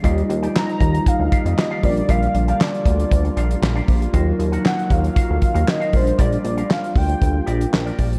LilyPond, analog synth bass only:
\new Staff \with { instrumentName = "Analog synth bass" } { \clef bass \time 4/4 \key ees \lydian \tempo 4 = 117 ees,8 ees,8 r8 ees,8 r16 d,16 r16 f,16 r8 bes,,8 | bes,,8 bes,,8 r8 d,8 d,8 bes,,8 bes,,8 bes,,8 | ees,8 ees,8 r8 ees,8 r16 d,16 r16 ees,16 r8 bes,,8 | bes,,8 bes,,8 r8 d,8 d,8 bes,,8 bes,,8 bes,,8 | }